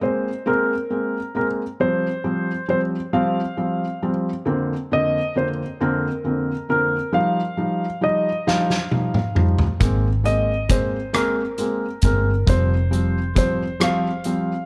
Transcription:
0.01 G#3 A#3 C4 C5
0.46 G#3 A#3 C4 A#4
0.90 G#3 A#3 C4
1.35 G#3 A#3 C4 A#4
1.80 F3 G3 C4 C5
2.24 F3 G3 C4
2.68 F3 G3 C4 C5
3.13 F3 G3 C4 F5
3.57 F3 G3 C4
4.02 F3 G3 C4
4.45 F2 D3 A#3 C4
4.91 F2 D3 A#3 C4 D#5
5.35 F2 D3 A#3 C4 C5
5.80 F2 D3 A#3 C4 A#4
6.24 F2 D3 A#3 C4
6.69 F2 D3 A#3 C4 A#4
7.13 F3 G3 D#4 F5
7.57 F3 G3 D#4
8.01 F3 G3 D#4 D#5
8.47 F3 G3 D#4 F5, snare
8.70 snare
8.91 F3 G3 D#4, high tom
9.14 mid tom
9.35 F3 G3 D#4, mid tom
9.58 floor tom
9.80 G#1 G#3 A#3 C4, kick, closed hi-hat
10.24 G#3 A#3 C4 D#5, closed hi-hat
10.69 G#3 A#3 C4 C5, kick, closed hi-hat
11.13 G#3 A#3 C4 A#4, cross-stick, closed hi-hat
11.58 G#3 A#3 C4, closed hi-hat
12.02 G1 G#3 A#3 C4 A#4, kick, closed hi-hat
12.46 F1 F3 G3 C4 C5, kick, closed hi-hat
12.91 F3 G3 C4, closed hi-hat
13.35 F3 G3 C4 C5, kick, closed hi-hat
13.80 F3 G3 C4 F5, cross-stick, closed hi-hat
14.24 F3 G3 C4, closed hi-hat

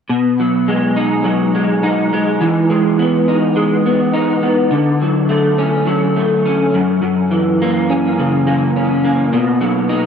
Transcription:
0.10 B2
0.40 F#3
0.68 G#3
0.96 D#4
1.24 F#3
1.55 G#3
1.83 D#4
2.13 G#3
2.41 E3
2.70 G#3
2.99 B3
3.28 D#4
3.56 G#3
3.86 B3
4.14 D#4
4.43 B3
4.71 D3
5.02 F#3
5.29 A3
5.58 C#4
5.87 F#3
6.16 A3
6.46 C#4
6.74 F#2
7.02 F#2
7.31 E3
7.62 A#3
7.90 C#4
8.19 C#3
8.47 A#3
8.76 C#4
9.04 A#3
9.33 B2
9.61 F#3
9.89 D#4

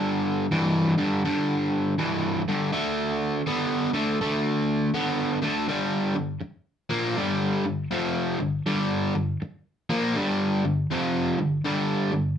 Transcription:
Already playing: G2 D3
0.51 G2 E3
0.98 G2 D3
1.25 G2 D3
1.98 G2 E3
2.48 G2 D3
2.73 D3 A3
3.46 D3 B3
3.93 D3 A3
4.21 D3 A3
4.94 D3 B3
5.42 D3 A3
5.68 G2 D3 G3
6.16 G2 D3
6.41 muted overdriven electric guitar stroke
6.90 A#2 F3 A#3
7.17 G2 D3 G3
7.65 G2 D3
7.91 F2 C3 F3
8.39 G2 D3
8.66 G2 D3 G3
9.15 G2 D3
9.42 muted overdriven electric guitar stroke
9.90 A#2 F3 A#3
10.16 G2 D3 G3
10.65 G2 D3
10.91 F2 C3 F3
11.39 G2 D3
11.64 G2 D3 G3
12.12 G2 D3

